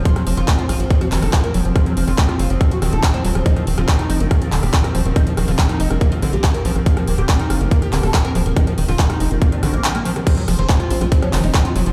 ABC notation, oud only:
X:1
M:4/4
L:1/16
Q:1/4=141
K:none
V:1 name="Oud" clef=bass
F F, F, F F, F, F F, F, _G F, A F, _B F, F, | F F, F, F F, F, F F, F, _G F, A F, c F, F, | _E _E, E, F E, E, E E, E, F E, G E, _B E, E, | _E _E, E, F E, E, E E, E, F E, G E, _B E, E, |
F _B, B, G B, B, F B, B, G B, A B, _B B, B, | _E _E, E, F E, E, E E, E, D E, _B, E, B, E, E, | C F, F, C F, F, C F, F, _D F, _E F, F F, F, |]